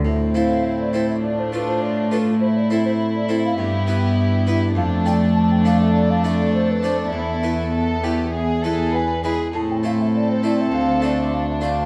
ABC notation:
X:1
M:4/4
L:1/16
Q:1/4=101
K:Am
V:1 name="Flute"
e2 f2 e d c e d c B c d2 B2 | c d e c2 d e f e6- e z | f2 g2 a g f e d f e d c B c d | e12 ^g2 b2 |
a g f e d c d e f2 d e f e f2 |]
V:2 name="Violin section"
E8 F8 | E8 G8 | A16- | A8 ^G6 z2 |
A16 |]
V:3 name="Violin section"
C8 D8 | E16 | D16 | E4 A2 G2 ^G2 A2 B2 G2 |
z8 D8 |]
V:4 name="Harpsichord"
z2 [CEA]4 [CEA]2 z2 [A,FA]4 [A,FA]2 | z2 [CEA]4 [CEA]2 z2 [B,EB]4 [B,EB]2 | z2 [A,Dd]4 [A,Dd]2 z2 [A,Dd]4 [A,Dd]2 | z2 [A,EB]4 [A,EB]2 z2 [^G,EB]4 [G,EB]2 |
z2 [A,Ec]4 [A,Ec]2 z2 [A,Dc]4 [A,Dc]2 |]
V:5 name="Harpsichord" clef=bass
A,,16- | A,,8 G,,8 | F,,16 | E,,12- E,,2 z2 |
A,,8 D,,8 |]
V:6 name="Viola section"
A,16- | A,8 B,8 | A,16 | B,12- B,2 z2 |
C16 |]
V:7 name="Cello section" clef=bass
A,,16- | A,,8 G,,8 | F,,16 | E,,12- E,,2 z2 |
A,,8 D,,8 |]